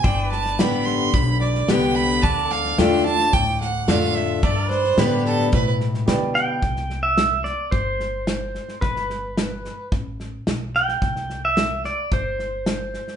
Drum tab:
HH |----p-------p---|----p-------p---|----p-------p---|----p-------p---|
SD |o-ooo-o-o-ooo-o-|o-ooo-ooo-o-o-o-|o-ooo-ooo-ooo-o-|ooo-o-o-o-o-o-oo|
BD |o-------o-------|o-------o-------|o-------o-------|o-------o-------|

HH |----p-------p---|----p-------p---|
SD |ooo-o-o-o-o-o-oo|ooo-o-o-o-o-o-oo|
BD |o-------o-------|o-------o-------|